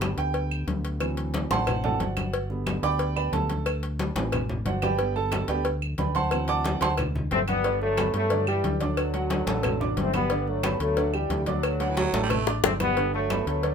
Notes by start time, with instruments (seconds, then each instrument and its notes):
Already playing: fingered electric bass G1, grand piano D3 G3 B3 B5
0.01 cowbell, high conga, claves
0.17 fingered electric bass D2, grand piano G5, cowbell
0.34 cowbell, high conga
0.51 high conga, claves
0.67 fingered electric bass D2, cowbell, high conga
0.85 cowbell
1.00 grand piano E3 F#3 C4, cowbell, high conga, claves
1.17 cowbell, high conga
1.34 cowbell, high conga
1.50 fingered electric bass A1, grand piano C5 F#5 A5 C6, cowbell, high conga
1.67 cowbell, high conga, low conga, claves
1.84 grand piano E3 F#3 C4 A4 D5 F#5 A5, high conga, low conga
2.00 fingered electric bass G1, grand piano F#4 C5 D5 F#5, cowbell, high conga
2.17 cowbell, high conga, claves
2.33 cowbell, high conga
2.50 grand piano D3 G3 B3, high conga
2.66 cowbell, high conga, claves
2.83 fingered electric bass D2, grand piano D5 G5 B5 D6, cowbell
2.99 cowbell, high conga
3.16 grand piano B4 D5 G5 B5, high conga, claves
3.32 fingered electric bass D2, grand piano D3 G3 B3 A4 A5, cowbell, high conga
3.50 cowbell, high conga
3.66 cowbell, claves
3.83 cowbell, high conga
3.99 cowbell, high conga
4.15 fingered electric bass A1, grand piano E3 F#3 C4, cowbell, high conga
4.32 cowbell, high conga, low conga, claves
4.49 high conga, low conga
4.65 fingered electric bass G1, grand piano F#4 C5 D5 F#5, cowbell, high conga
4.82 grand piano G4 B4 D5 G5, cowbell, high conga, claves
4.99 grand piano D3 G3 B3, cowbell, high conga
5.16 grand piano A4 A5, high conga
5.32 cowbell, high conga, claves
5.48 fingered electric bass D2, grand piano D3 G3 B3 G4 B4 D5 G5, cowbell
5.65 cowbell, high conga
5.82 high conga, claves
5.98 fingered electric bass D2, grand piano B4 D5 G5 B5, cowbell, high conga
6.15 grand piano C5 F#5 A5 C6, cowbell, high conga
6.31 grand piano E3 F#3 C4, cowbell, high conga, claves
6.48 grand piano D5 F#5 A5 D6, cowbell, high conga
6.64 cowbell, high conga
6.81 fingered electric bass D2, grand piano C5 F#5 A5 C6, cowbell, high conga
6.97 cowbell, high conga, low conga, claves
7.16 high conga, low conga
7.31 fingered electric bass G1, trombone section A3 C4, cowbell, high conga
7.48 trombone section G3 B3, cowbell, high conga, claves
7.64 grand piano D3 D4 D5, cowbell, high conga
7.82 trombone section F#3 A3, high conga
7.97 grand piano B3 B4 B5, cowbell, high conga, claves
8.14 fingered electric bass G2, trombone section F#3 A3, cowbell
8.30 grand piano D3 D4 D5, cowbell, high conga
8.47 trombone section E3 G3, grand piano G3 G4 G5, high conga, claves
8.64 fingered electric bass D2, cowbell, high conga
8.81 trombone section D3 F#3, grand piano D4 D5 D6, cowbell, high conga
8.97 cowbell, high conga, claves
9.14 grand piano F#3 F#4 F#5, cowbell, high conga
9.30 cowbell, high conga
9.46 fingered electric bass A1, grand piano A3 A4 A5, cowbell, high conga
9.63 cowbell, high conga, low conga, claves
9.80 grand piano D4 D5 D6, high conga, low conga
9.96 fingered electric bass G1, trombone section A3 C4, cowbell, high conga
10.14 trombone section G3 B3, grand piano B3 B4 B5, cowbell, high conga, claves
10.30 grand piano D3 D4 D5, cowbell, high conga
10.47 trombone section F#3 A3, high conga
10.63 grand piano B3 B4 B5, cowbell, high conga, claves
10.80 fingered electric bass D2, trombone section F#3 A3, cowbell
10.97 grand piano D3 D4 D5, cowbell, high conga
11.13 trombone section E3 G3, grand piano G3 G4 G5, high conga, claves
11.30 fingered electric bass D2, cowbell, high conga
11.46 trombone section D3 F#3, grand piano D4 D5 D6, cowbell, high conga
11.63 cowbell, high conga, claves
11.80 baritone saxophone D3, grand piano F#3 F#4 F#5, cowbell, high conga
11.89 baritone saxophone E3
11.97 baritone saxophone F#3, cowbell, high conga
12.13 fingered electric bass A1, grand piano A3 A4 A5, cowbell, high conga
12.22 baritone saxophone G3
12.30 baritone saxophone A3, cowbell, high conga, low conga, claves
12.47 grand piano D4 D5 D6, high bongo, high conga
12.63 fingered electric bass G1, trombone section A3 C4, cowbell, high bongo, high conga
12.80 trombone section G3 B3, grand piano B3 B4 B5, cowbell, low bongo, high conga, claves
12.97 grand piano D3 D4 D5, cowbell, high conga
13.14 trombone section F#3 A3, high conga
13.30 grand piano B3 B4 B5, cowbell, high conga, claves
13.46 fingered electric bass D2, trombone section F#3 A3, cowbell
13.63 grand piano D3 D4 D5, cowbell, high conga